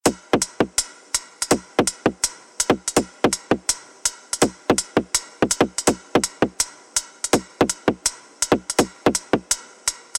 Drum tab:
HH |x---x---x---x--x|x---x---x---x--x|x---x---x---x--x|x---x---x---x--x|
BD |o--o--o---------|o--o--o------o--|o--o--o---------|o--o--o----o-o--|

HH |x---x---x---x--x|x---x---x---x--x|x---x---x---x---|
BD |o--o--o---------|o--o--o------o--|o--o--o---------|